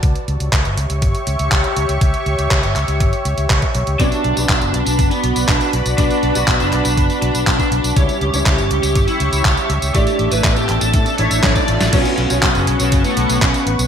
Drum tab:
CC |----------------|----------------|----------------|----------------|
HH |xxxxxxxxxxxxxxxx|xxxxxxxxxxxxxxxx|xxxxxxxxxxxxxxxx|xxxxxxxxxxxxxxxx|
TB |----------------|----------------|xx-xxx-xxx-xxx-x|xx-xxx-xxx-xxx-x|
CP |----x-------x---|----x-x-----x---|----x-------x---|----x-x-----x---|
SD |----------------|----------------|----------------|----------------|
BD |o---o---o---o---|o---o---o---oo--|o---o---o---o---|o---o---o---oo--|

CC |----------------|----------------|x---------------|
HH |xxxxxxxxxxxxxxxx|xxxxxxxxxxxxxxxx|xxxxxxxxxxxxxxxx|
TB |xx-xxx-xxx-xxx-x|xx-xxx-xxx-xxx-x|xx-xxx-xxx-xxx-x|
CP |----x-------x---|----x-x-----x---|----x-------x---|
SD |----------------|------------o--o|----------------|
BD |o---o---o---o---|o---o---o---oo--|o---o---o---o---|